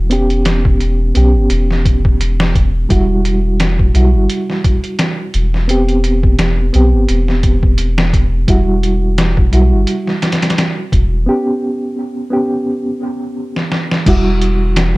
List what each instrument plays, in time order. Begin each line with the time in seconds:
Already playing: sub bass E1, reed electric piano G3 E4 F#4
0.10 reed electric piano B3 C#4 G4, closed hi-hat
0.30 closed hi-hat
0.45 snare, closed hi-hat
0.65 kick
0.80 closed hi-hat
1.15 sub bass B1, reed electric piano B3 C#4 G4, closed hi-hat
1.35 sub bass G1
1.50 sub bass E1, closed hi-hat
1.71 snare
1.85 kick, closed hi-hat
2.05 kick
2.21 closed hi-hat
2.40 snare
2.55 sub bass E1, kick, closed hi-hat
2.89 sub bass E1, reed electric piano G3 E4 F#4, kick, closed hi-hat
3.25 closed hi-hat
3.60 snare, closed hi-hat
3.79 kick
3.94 sub bass B1, reed electric piano G3 E4 F#4, closed hi-hat
4.14 sub bass G1
4.30 closed hi-hat
4.50 snare
4.64 kick, closed hi-hat
4.84 closed hi-hat
4.99 snare, closed hi-hat
5.34 sub bass E1, closed hi-hat
5.54 snare
5.68 reed electric piano B3 C4 G4, closed hi-hat
5.88 closed hi-hat
6.04 closed hi-hat
6.23 kick
6.39 snare, closed hi-hat
6.73 sub bass B1, reed electric piano B3 C4 G4, closed hi-hat
6.93 sub bass G1
7.09 sub bass E1, closed hi-hat
7.28 snare
7.43 kick, closed hi-hat
7.63 kick
7.78 closed hi-hat
7.98 snare
8.13 kick, closed hi-hat
8.47 sub bass E1, reed electric piano G3 E4 F#4, kick, closed hi-hat
8.83 closed hi-hat
9.18 snare, closed hi-hat
9.37 kick
9.52 sub bass B1, reed electric piano G3 E4 F#4, closed hi-hat
9.72 sub bass G1
9.87 closed hi-hat
10.07 snare
10.22 snare, closed hi-hat
10.32 snare, closed hi-hat
10.42 snare, closed hi-hat
10.50 snare, closed hi-hat
10.58 snare, closed hi-hat
10.92 sub bass E1, kick, closed hi-hat
11.26 reed electric piano B3 C#4 G4
12.30 reed electric piano B3 C#4 G4
13.56 snare
13.72 snare
13.91 snare
14.06 sub bass E1, reed electric piano G3 E4 F#4, kick, closed hi-hat, crash
14.42 closed hi-hat
14.76 snare, closed hi-hat